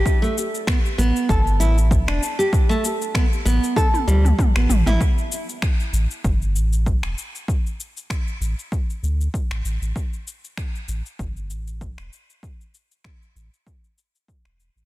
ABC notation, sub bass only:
X:1
M:4/4
L:1/16
Q:"Swing 16ths" 1/4=97
K:G
V:1 name="Sub bass" clef=bass
z6 A,,, z G,,,2 A,,,3 E,,, z2 | z6 A,,, z3 D,,2 z A,,, A,,, A,,, | z6 A,,, z G,,,2 A,,,3 E,,, z2 | z6 A,,, z3 D,,2 z A,,, A,,, A,,, |
z6 A,,, z G,,,2 A,,,3 E,,, z2 | z6 A,,, z6 E,,,2 A,,, |]